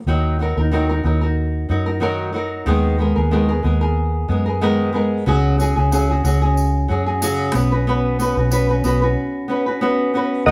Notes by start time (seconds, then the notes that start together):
0.07 D#2 D#3 F#3 D#4 F#4 A#4
0.39 F#3 D#4 F#4 A#4
0.57 D#2 D#4 F#4 A#4
0.71 D#3 F#3 D#4 F#4 A#4
0.89 D#4 F#4 A#4
1.03 D#2 F#3 D#4 F#4 A#4
1.21 D#4 F#4 A#4
1.69 F#2 F#3 D#4 F#4 A#4
1.86 D#4 F#4 A#4
2.00 D#3 F#3 D#4 F#4 A#4
2.33 F#3 D#4 F#4 A#4
2.66 D#2 D#3 G#3 B3 G#4 A#4
2.98 G#3 B3 G#4 A#4
3.16 D#2 B3 G#4 A#4
3.31 D#3 G#3 B3 G#4 A#4
3.49 B3 G#4 A#4
3.63 D#2 G#3 B3 G#4 A#4
3.81 B3 G#4 A#4
4.28 F#2 G#3 B3 G#4 A#4
4.46 B3 G#4 A#4
4.61 D#3 G#3 B3 G#4 A#4
4.93 G#3 B3 G#4 A#4
5.26 C#2 C#3 F#3 C#4 F#4 G#4
5.58 F#3 C#4 F#4 G#4, tambourine
5.76 C#2 C#4 F#4 G#4
5.92 C#3 F#3 C#4 F#4 G#4, tambourine
6.10 C#4 F#4 G#4
6.24 C#2 F#3 C#4 F#4 G#4, tambourine
6.42 C#4 F#4 G#4
6.57 tambourine
6.88 F#2 F#3 C#4 F#4 G#4
7.06 C#4 F#4 G#4
7.22 C#3 F#3 C#4 F#4 G#4, tambourine
7.54 B1 B3 C#4 F#4 B4, tambourine
7.72 C#4 F#4 B4
7.87 B3 C#4 F#4 B4
8.19 B3 C#4 F#4 B4, tambourine
8.37 B1 C#4 F#4 B4
8.51 B3 C#4 F#4 B4, tambourine
8.69 C#4 F#4 B4
8.84 B1 B3 C#4 F#4 B4, tambourine
9.02 C#4 F#4 B4
9.48 B3 C#4 F#4 B4
9.66 C#4 F#4 B4
9.81 B3 C#4 F#4 B4
10.14 B3 C#4 F#4 B4
10.46 D#2 D#3 F#3 D#4 F#4 A#4 D#5 F#5 D#6